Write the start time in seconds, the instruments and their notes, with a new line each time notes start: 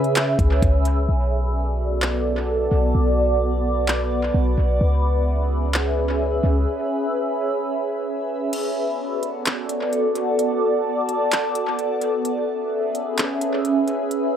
Already playing: 808-style bass C#3, ambient pad C#4 G#4 B4 E5
0.04 closed hi-hat
0.16 clap, closed hi-hat
0.39 808-style bass C#2, kick, closed hi-hat
0.62 808-style bass C#2, kick, closed hi-hat
0.85 closed hi-hat
1.09 808-style bass B1, ambient pad B3 F#4 A4 D5
2.02 clap
2.72 808-style bass B1
2.95 808-style bass B1, ambient pad B4
3.88 clap
4.34 808-style bass B1
4.58 808-style bass B1
4.81 808-style bass C#2, ambient pad C#4 G#4 E5
5.74 clap
6.44 808-style bass C#2
8.53 ambient pad B3 F#4 A4 D5, closed hi-hat, crash
9.23 closed hi-hat
9.46 clap, closed hi-hat
9.69 closed hi-hat
9.93 closed hi-hat
10.15 closed hi-hat
10.39 closed hi-hat
11.09 closed hi-hat
11.32 clap, closed hi-hat
11.55 closed hi-hat
11.79 closed hi-hat
12.01 closed hi-hat
12.25 ambient pad C#4 G#4 B4 E5, closed hi-hat
12.95 closed hi-hat
13.18 clap, closed hi-hat
13.41 closed hi-hat
13.65 closed hi-hat
13.88 closed hi-hat
14.11 closed hi-hat